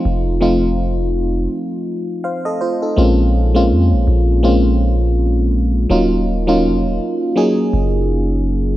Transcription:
0.00 0.31 F3 medium
0.00 0.31 A3 medium
0.00 0.32 C4 medium
0.00 0.32 D#4 medium
0.00 0.32 F4 medium
0.05 1.47 F1 loud
0.41 1.66 F3 medium
0.41 1.66 A3 medium
0.41 1.66 C4 medium
0.41 1.66 D#4 medium
0.41 1.66 F4 medium
2.24 2.45 C5 medium
2.24 2.45 F5 medium
2.46 2.60 A4 medium
2.46 2.60 D#5 medium
2.61 2.82 F4 medium
2.61 2.81 C5 medium
2.82 3.17 D#4 soft
2.82 3.17 A4 medium
2.97 3.73 A#1 loud
2.97 3.44 G#3 medium
2.97 3.45 A#3 medium
2.97 3.45 C4 medium
2.97 3.45 C#4 medium
2.97 3.45 F4 medium
3.55 4.31 G#3 medium
3.55 4.31 A#3 medium
3.55 4.31 C4 medium
3.55 4.32 C#4 medium
3.55 4.32 F4 medium
3.71 3.94 F2 medium
3.92 4.07 A#1 loud
4.07 5.86 A#1 loud
4.43 5.68 G#3 medium
4.43 5.68 A#3 medium
4.43 5.68 C4 medium
4.43 5.68 C#4 medium
4.43 5.69 F4 medium
5.90 6.65 D#1 loud
5.90 6.37 F#3 medium
5.90 6.38 A#3 medium
5.90 6.38 C#4 medium
5.90 6.38 D#4 medium
5.90 6.38 F4 medium
6.47 7.24 F#3 medium
6.47 7.24 A#3 medium
6.47 7.24 C#4 medium
6.47 7.24 D#4 medium
6.47 7.25 F4 medium
6.64 6.86 F1 medium
6.85 6.99 D#1 medium
7.36 8.61 F#3 medium
7.36 8.61 A#3 medium
7.36 8.61 C#4 medium
7.36 8.61 D#4 medium
7.36 8.62 G#4 medium
7.73 8.77 F#1 medium

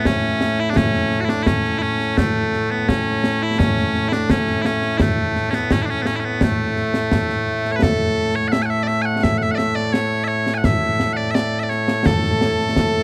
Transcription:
0.00 13.03 A2 medium
0.00 2.18 A3 medium
0.05 0.60 C#4 medium
0.05 concert bass drum medium
0.05 snare loud
0.41 snare medium
0.60 0.70 E4 medium
0.70 0.76 D4 medium
0.76 1.21 C#4 loud
0.76 concert bass drum medium
0.76 snare loud
0.94 snare soft
1.11 snare soft
1.21 1.25 F#4 medium
1.25 1.29 E4 medium
1.25 snare medium
1.29 1.43 D4 medium
1.43 1.78 C#4 medium
1.43 1.47 E4 medium
1.43 concert bass drum medium
1.43 snare medium
1.64 snare soft
1.78 2.18 C#4 medium
1.78 1.82 E4 medium
2.00 snare soft
2.18 2.71 A3 medium
2.18 concert bass drum medium
2.18 snare loud
2.53 snare soft
2.71 2.88 B3 medium
2.88 3.43 C#4 medium
2.88 concert bass drum medium
2.88 snare loud
3.24 snare medium
3.43 3.58 E4 medium
3.58 4.08 C#4 medium
3.58 concert bass drum medium
3.58 snare loud
3.77 snare soft
3.95 snare soft
4.08 4.13 E4 medium
4.08 snare medium
4.13 4.30 D4 medium
4.30 4.62 C#4 medium
4.30 concert bass drum medium
4.30 snare loud
4.47 snare soft
4.62 4.98 C#4 medium
4.62 4.66 E4 medium
4.62 snare medium
4.82 snare soft
4.98 5.50 A3 medium
4.98 5.01 E4 medium
4.98 concert bass drum medium
4.98 snare loud
5.36 snare soft
5.50 5.72 B3 medium
5.50 5.54 C#4 medium
5.50 snare medium
5.71 5.82 C#4 medium
5.71 concert bass drum medium
5.71 snare loud
5.82 5.90 D4 medium
5.82 5.86 E4 medium
5.90 6.02 C#4 loud
6.02 6.06 B3 medium
6.02 snare medium
6.06 6.16 C#4 medium
6.16 6.25 C#4 medium
6.16 6.20 E4 medium
6.25 6.43 B3 medium
6.41 7.72 A3 medium
6.41 concert bass drum medium
6.41 snare loud
6.76 snare soft
6.94 snare medium
7.12 concert bass drum medium
7.12 snare loud
7.30 snare soft
7.65 snare soft
7.72 7.76 C#5 medium
7.76 7.83 B4 medium
7.82 8.35 A4 medium
7.82 concert bass drum medium
7.82 snare loud
8.35 8.48 C#5 medium
8.48 8.62 E5 loud
8.48 8.52 F#5 loud
8.53 snare medium
8.62 8.70 F#5 medium
8.62 8.66 G#5 medium
8.70 8.83 E5 loud
8.83 8.87 D5 medium
8.87 9.02 E5 loud
8.87 snare soft
9.02 9.23 F#5 loud
9.02 9.05 G#5 loud
9.23 9.38 E5 loud
9.23 concert bass drum medium
9.23 snare medium
9.38 9.43 F#5 medium
9.38 snare soft
9.43 9.51 E5 loud
9.51 9.58 D5 medium
9.51 9.55 F#5 medium
9.58 9.75 E5 loud
9.58 snare medium
9.75 9.93 D5 medium
9.75 snare soft
9.93 10.24 C#5 medium
9.93 snare medium
10.24 10.54 C#5 medium
10.24 10.28 E5 medium
10.47 snare medium
10.54 10.65 F#5 medium
10.54 10.58 G#5 medium
10.64 11.13 E5 loud
10.64 concert bass drum medium
10.64 snare medium
11.00 snare medium
11.13 11.31 D5 medium
11.13 11.17 F#5 medium
11.31 11.60 D5 medium
11.31 11.35 E5 medium
11.35 snare medium
11.60 11.70 D5 medium
11.60 11.63 E5 medium
11.70 12.06 C#5 medium
11.70 snare soft
11.88 snare medium
12.06 13.03 A4 medium
12.06 concert bass drum medium
12.06 snare loud
12.23 snare soft
12.41 snare medium
12.59 snare soft
12.76 concert bass drum medium
12.76 snare loud

